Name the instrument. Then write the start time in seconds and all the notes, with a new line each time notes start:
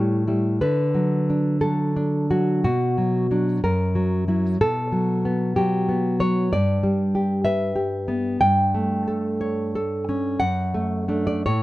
nylon-string guitar
Already playing: A2 G3 C#5
0.27 G3 E4
0.61 D3 B4
0.94 F#3
1.30 D4
1.61 F#3 A4
1.96 D4
2.31 F#3 F#4
2.64 B2 F#4
2.98 F#3
3.31 F#3 D4
3.64 F#2 A#4
3.95 F#3
4.28 F#3 E4
4.61 B2 A4
4.92 F#3
5.25 B3
5.56 F#3 G4
5.89 B3
6.20 F#3 C#5
6.53 G2 D5
6.83 G3
7.15 G4
7.45 B4 E5
7.76 G4
8.08 B3
8.41 G2 G5
8.74 A3
9.08 A4
9.41 C#5
9.75 A4
10.09 C#4
10.40 F#2 F#5
10.74 A3
11.08 A3 D4
11.27 D5
11.46 A2 C#5